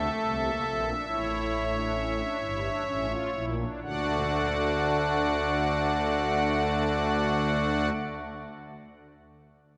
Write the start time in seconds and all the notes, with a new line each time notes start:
Already playing: A3 A4 E5
0.24 C2 C3
0.45 A#3
0.67 A#1 A#2 C4
0.87 D4
1.08 A1 A2 E4 C#5
1.73 D4
1.94 C#4
2.17 D4
2.39 G1 G2 E4
2.62 D4
2.85 A1 A2 C#4
3.09 F4
3.34 A#1 A#2 E4
3.58 D4
3.82 D2 D3 A3 D4 F#4 D5 F#5